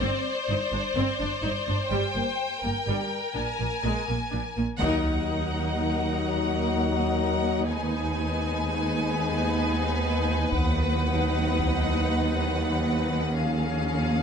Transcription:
Already playing: violin section C5 D5
0.01 double bass section G1, cello section G2, viola section C4
0.49 double bass section G1, cello section G2, viola section D#4
0.73 double bass section G1, cello section G2, viola section D4
0.96 double bass section G1, cello section G2, viola section C4
1.20 double bass section G1, cello section G2, viola section D4
1.43 double bass section G1, cello section G2, viola section D#4
1.68 double bass section G1, cello section G2, viola section D4
1.91 double bass section G1, cello section G2, viola section G3, violin section G5
2.15 double bass section G1, cello section G2, viola section A#3
2.63 double bass section G1, cello section G2, viola section A#3, violin section A#4
2.87 double bass section G1, cello section G2, viola section G3
3.35 double bass section A#1, cello section A#2, viola section D4, violin section G#5
3.59 double bass section A#1, cello section A#2, viola section A#3
3.84 double bass section A#1, cello section A#2, viola section G#3
4.07 double bass section A#1, cello section A#2, viola section A#3
4.32 double bass section A#1, cello section A#2, viola section D4
4.57 double bass section A#1, cello section A#2, viola section A#3
4.80 cello section D#2, double bass section D#2, french horn section F#3 D#4, viola section D#4, violin section A#4 F#5, taiko
7.67 french horn section G#3 B3, violin section B4 G#5
10.52 double bass section D#2, cello section D#2, french horn section F#3, viola section D#4, violin section F#5, taiko
11.59 taiko
13.36 french horn section F3 C#4, viola section C#4, violin section G#4 F5

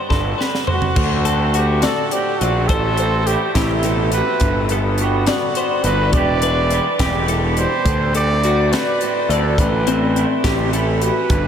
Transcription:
Already playing: clean electric guitar G2 G3 B3 F#4
0.10 picked electric bass G1, clean electric guitar F#4 A4, kick, snare
0.38 clean electric guitar D3 B4, snare
0.55 snare
0.67 clean electric guitar F#4 C5, floor tom
0.73 trumpet F#4
0.82 floor tom
0.96 picked electric bass D2, clean electric guitar D3, kick, crash
1.25 clean electric guitar C4 A4, closed hi-hat
1.54 clean electric guitar A3 F#4, trumpet G4, closed hi-hat
1.82 trumpet A4, clean electric guitar D5, snare, closed hi-hat
1.86 clean electric guitar F#4
2.11 clean electric guitar A2 C5, trumpet G4, closed hi-hat
2.16 clean electric guitar F#4
2.39 picked electric bass A#1, trumpet F#4, clean electric guitar D5, closed hi-hat
2.44 clean electric guitar C4
2.68 picked electric bass A1, trumpet A4, clean electric guitar C5, kick, closed hi-hat
2.72 clean electric guitar A2
2.97 clean electric guitar C4 C5, closed hi-hat
3.27 clean electric guitar A3, trumpet G4, closed hi-hat
3.31 clean electric guitar E4
3.55 picked electric bass A1, clean electric guitar C3 G4, trumpet E4, kick, snare, closed hi-hat
3.83 clean electric guitar B2 A4, closed hi-hat
4.12 clean electric guitar A2 F#4, trumpet B4, closed hi-hat
4.40 picked electric bass G1, clean electric guitar G2, kick, closed hi-hat
4.69 clean electric guitar B3 A4, closed hi-hat
4.98 clean electric guitar G3 B3 F#4, trumpet F#4, closed hi-hat
5.26 clean electric guitar B3 D5, trumpet F#4, snare, closed hi-hat
5.55 clean electric guitar D3 B3 C5, closed hi-hat
5.84 picked electric bass G1, clean electric guitar F#4 D5, trumpet B4, closed hi-hat
6.13 picked electric bass E1, clean electric guitar E3 G3 B4, trumpet D5, kick, closed hi-hat
6.17 clean electric guitar D4 E4 G4
6.42 clean electric guitar D4 B4, closed hi-hat
6.71 clean electric guitar G3 E4, closed hi-hat
6.99 picked electric bass E1, clean electric guitar G4, kick, snare, closed hi-hat
7.28 clean electric guitar B2 D4 A4, closed hi-hat
7.47 clean electric guitar E4
7.57 clean electric guitar G4, trumpet C5, closed hi-hat
7.61 clean electric guitar G4
7.85 picked electric bass D2, clean electric guitar D3, kick, closed hi-hat
8.15 clean electric guitar C4 A4, trumpet D5, closed hi-hat
8.44 clean electric guitar A3 F#4, closed hi-hat
8.73 clean electric guitar A4 D5, trumpet B4, snare, closed hi-hat
9.01 clean electric guitar A2 F#4 C5, closed hi-hat
9.29 picked electric bass D2, clean electric guitar F#4 D5, trumpet A4, closed hi-hat
9.58 picked electric bass A1, clean electric guitar A2 C5, trumpet B4, kick, closed hi-hat
9.87 clean electric guitar C4, closed hi-hat
10.16 clean electric guitar A3 E4, closed hi-hat
10.44 picked electric bass A1, clean electric guitar G4, kick, snare, closed hi-hat
10.73 clean electric guitar E3 E4 A4, closed hi-hat
11.01 clean electric guitar F#4, trumpet B4, closed hi-hat
11.30 picked electric bass G1, clean electric guitar G2, kick, closed hi-hat

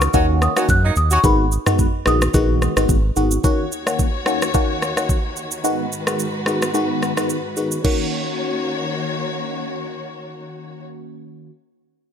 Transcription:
Already playing: marimba C#6
0.01 cross-stick, shaker
0.14 analog synth bass D#2, fm electric piano D#3 A#3 C#4 F#4, horn section C#4 D#4 F#4, kick, shaker
0.42 marimba D#6, cross-stick, shaker
0.56 fm electric piano D#3 A#3 C#4 F#4, horn section C#4 D#4 F#4, cross-stick, shaker
0.69 analog synth bass F#2, marimba F#6, kick, shaker
0.84 horn section F#3 A#3 D#4
0.96 analog synth bass D#2, marimba D#6, shaker
1.11 horn section C#4 D#4 F#4, marimba C#6, shaker
1.24 analog synth bass G#1, fm electric piano D#3 G#3 B3 F#4, marimba B5, kick, shaker
1.52 shaker
1.66 fm electric piano D#3 G#3 B3 F#4, cross-stick, mid tom, shaker
1.79 kick, shaker
2.06 analog synth bass A#1, fm electric piano D#3 G#3 B3 F#4, marimba D#6, cross-stick, shaker
2.22 cross-stick, shaker
2.34 analog synth bass A#1, fm electric piano D#3 G#3 B3 F#4, kick, shaker
2.62 cross-stick, shaker
2.76 analog synth bass G#1, fm electric piano D#3 G#3 B3 F#4, cross-stick, shaker
2.89 analog synth bass G#1, kick, shaker
3.16 analog synth bass G#1, fm electric piano D#3 G#3 B3 F#4, shaker
3.31 shaker
3.44 string section D#2 D#3 F#4 C#5, fm electric piano D#3 A#3 C#4 F#4, kick, shaker
3.72 shaker
3.86 fm electric piano D#3 A#3 C#4 F#4, cross-stick, shaker
3.99 kick, shaker
4.26 fm electric piano D#3 A#3 C#4 F#4, cross-stick, shaker
4.42 cross-stick, shaker
4.54 fm electric piano D#3 A#3 C#4 F#4, kick, shaker
4.82 cross-stick, shaker
4.96 fm electric piano D#3 A#3 C#4 F#4, cross-stick, shaker
5.09 kick, shaker
5.37 shaker
5.51 shaker
5.64 string section G#2 F#4 B4, fm electric piano D#3 G#3 B3 F#4, shaker
5.92 shaker
6.07 fm electric piano D#3 G#3 B3 F#4, cross-stick, shaker
6.19 shaker
6.46 fm electric piano D#3 G#3 B3 F#4, cross-stick, shaker
6.62 cross-stick, shaker
6.74 fm electric piano D#3 G#3 B3 F#4, shaker
7.03 cross-stick, shaker
7.17 fm electric piano D#3 G#3 B3 F#4, cross-stick, shaker
7.30 shaker
7.57 fm electric piano D#3 G#3 B3 F#4, shaker
7.71 shaker
7.84 fm electric piano D#3 A#3 C#4 F#4, string section D#3 A#3 F#4 C#5, kick, crash

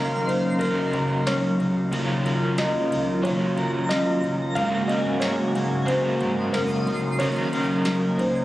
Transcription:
Already playing: analog synth bass D#2, analog synth pad C#3 F#3 A#3 D#4, clean electric guitar D#3 F#3 C#4 A#4, overdriven electric guitar C#4 D#4 A#4
0.27 analog synth bass D#2, clean electric guitar D#4, felt piano C5, ride
0.59 overdriven electric guitar F#3 C#4, clean electric guitar F#3, felt piano A#4, kick, ride
0.63 overdriven electric guitar D#4 A#4
0.93 analog synth bass D#2, clean electric guitar A#4, kick, ride
1.27 analog synth bass C#2, clean electric guitar C#4, felt piano C#5, snare, ride, tambourine
1.59 analog synth bass C#2, clean electric guitar D#4, kick, ride
1.92 analog synth bass D#2, overdriven electric guitar D#3 F#3 C#4 D#4 A#4, clean electric guitar D#3, analog synth pad F4, ride
2.24 clean electric guitar C#4, overdriven electric guitar C#4 D#4 A#4, ride
2.58 clean electric guitar A#4, felt piano D#5, snare, ride, tambourine
2.91 analog synth bass C#2, clean electric guitar D#4, ride
3.22 analog synth bass D#2, overdriven electric guitar F#3 C#4, clean electric guitar F#3, felt piano C#5, synth texture A#5, kick, ride
3.27 overdriven electric guitar D#4 A#4
3.57 clean electric guitar A#4, kick, ride
3.89 clean electric guitar C#4, felt piano D#5, snare, ride, tambourine
4.23 clean electric guitar D#4, kick, ride
4.55 analog synth bass G#1, overdriven electric guitar G#2 D#3 F#3 C#4 D#4 A#4, clean electric guitar G#2, analog synth pad C#3 G#3 A#3 F#4, felt piano F5, synth texture G#5, kick, ride
4.88 overdriven electric guitar F#3 C#4 D#4 A#4, clean electric guitar C#4, felt piano D#5, ride
5.05 analog synth bass G#1
5.20 clean electric guitar A#4, felt piano C#5, snare, ride, tambourine
5.55 analog synth bass G#1, clean electric guitar D#4, ride
5.86 overdriven electric guitar F#3 C#4, clean electric guitar F#3, felt piano C5, synth texture C6, kick, ride
5.91 overdriven electric guitar D#4 A#4
6.21 analog synth bass G#1, clean electric guitar A#4, kick, ride
6.53 analog synth bass F#1, clean electric guitar C#4, felt piano A#4, snare, ride, tambourine
6.86 analog synth bass C#2, clean electric guitar D#4, kick, ride
7.19 analog synth bass D#2, overdriven electric guitar D#3 F#3 C#4 D#4 A#4, clean electric guitar D#3, analog synth pad F#3 A#3 D#4, felt piano C#5, ride
7.52 clean electric guitar C#4, overdriven electric guitar C#4 D#4 A#4, ride
7.84 clean electric guitar A#4, synth texture G#5, snare, ride, tambourine
8.18 analog synth bass C#2, clean electric guitar D#4, felt piano C5, ride

